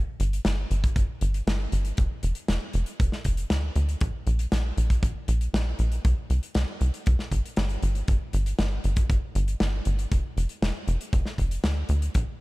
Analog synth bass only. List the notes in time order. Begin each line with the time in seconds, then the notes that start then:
0.20 G1
0.45 G1
0.71 G1
0.96 G1
1.21 G1
1.47 G1
1.72 G1
1.98 F1
2.23 F1
2.49 F1
2.74 F1
3.00 F1
3.25 F1
3.50 D2
3.76 D2
4.01 A#1
4.27 A#1
4.52 A#1
4.77 A#1
5.03 A#1
5.28 A#1
5.54 A#1
5.79 A#1
6.05 C2
6.30 C2
6.55 C2
6.81 C2
7.07 C2
7.31 G1
7.57 G1
7.83 G1
8.08 G1
8.34 G1
8.59 G1
8.84 G1
9.10 G1
9.35 G1
9.61 G1
9.86 G1
10.12 F1
10.37 F1
10.62 F1
10.88 F1
11.13 F1
11.38 F1
11.64 D2
11.89 D2
12.15 A#1